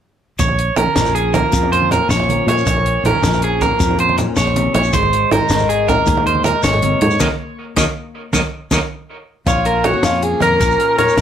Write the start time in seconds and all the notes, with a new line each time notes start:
0.39 A#1 C#5, muted steel-string acoustic guitar stroke, kick, closed hi-hat, high conga, shekere
0.48 low conga
0.59 closed hi-hat
0.76 A#1 C#4 A#4, closed hi-hat, low conga
0.86 high conga
0.96 A#1 F3, snare, closed hi-hat, shekere
1.05 low conga, shekere
1.15 G#4, closed hi-hat
1.34 A#3 A#4, kick, closed hi-hat, high conga, low conga, shekere
1.52 F2 A#2, kick, closed hi-hat, shekere
1.63 low conga
1.72 C5, closed hi-hat, low conga
1.82 high conga
1.91 C#4 A#4, closed hi-hat, low conga, shekere
2.09 A#1 F3 C#5, snare, closed hi-hat, low conga, shekere
2.20 low conga
2.29 closed hi-hat, high conga, low conga
2.47 A#2 A#3 C#5, closed hi-hat, low conga
2.58 shekere
2.66 A#1 A#2 C#5, kick, closed hi-hat, high conga, shekere
2.77 low conga
2.86 closed hi-hat
3.04 A#1 C#4 A#4, closed hi-hat, low conga
3.15 high conga
3.22 A#1 F3, snare, closed hi-hat, shekere
3.33 low conga, shekere
3.42 G#4, closed hi-hat
3.61 A#3 A#4, kick, closed hi-hat, high conga, low conga, shekere
3.80 F2 A#2, kick, closed hi-hat, shekere
3.91 low conga
3.99 C5, closed hi-hat, low conga
4.09 high conga
4.18 C#4, muted clean electric guitar stroke, closed hi-hat, low conga, shekere
4.36 A#1 C#3 C#5, snare, closed hi-hat, shekere
4.47 low conga
4.56 C3, closed hi-hat, high conga, low conga
4.74 A#1 A#2 C#5, closed hi-hat, low conga
4.84 shekere
4.93 G#1 G#2 C5, kick, closed hi-hat, high conga, shekere
5.03 low conga
5.13 closed hi-hat
5.31 G#1 D#4 A#4, closed hi-hat, low conga
5.41 high conga
5.49 G#1 D#3, snare, closed hi-hat, shekere
5.59 low conga, shekere
5.69 G#4, closed hi-hat
5.88 A#3 A#4, kick, closed hi-hat, high conga, low conga, shekere
6.06 D#2 G#2, kick, closed hi-hat, shekere
6.17 low conga
6.27 C5, closed hi-hat, low conga
6.35 high conga
6.44 D#4 A#4, closed hi-hat, low conga, shekere
6.63 G#1 A#2 C#5, snare, closed hi-hat, low conga, shekere
6.73 low conga
6.82 C3, closed hi-hat, high conga, low conga
7.01 G#2 C#5, muted steel-string acoustic guitar stroke, closed hi-hat, low conga
7.11 shekere
7.20 D#2 C#3 D#3 F#3 A#4 C#5 D#5, kick, snare, high conga, shekere
7.76 D#2 C#3 D#3 F#3 A#4 C#5 D#5, kick, snare, high conga, shekere
8.33 D#2 C#3 D#3 F#3 A#4 C#5 D#5, kick, snare, high conga, shekere
8.71 D#2 C#3 D#3 F#3 A#4 C#5 D#5, kick, snare, high conga, shekere
9.46 A#1 A#2 F4 C#5, kick, closed hi-hat, high conga, shekere
9.65 A#3 A#4, closed hi-hat
9.84 C#4 F#4 C#5, closed hi-hat, low conga
9.94 high conga
10.03 F2 F3 F4, snare, closed hi-hat, shekere
10.22 A#3 G#4, closed hi-hat
10.40 F2 C#4 A#4, closed hi-hat, high conga, low conga, shekere
10.60 A#1 A#2 A#4, kick, closed hi-hat, shekere
10.71 shekere
10.80 A#3, closed hi-hat
10.98 C#4 A#4 C#5, closed hi-hat, low conga
11.09 shekere
11.17 A#1 F3 A#4, snare, closed hi-hat, low conga, shekere